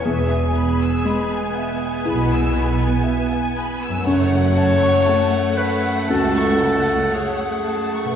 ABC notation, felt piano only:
X:1
M:4/4
L:1/8
Q:1/4=59
K:E
V:1 name="Felt piano"
E,,2 G,2 [EG]4 | F,,2 A,2 [CF]4 |]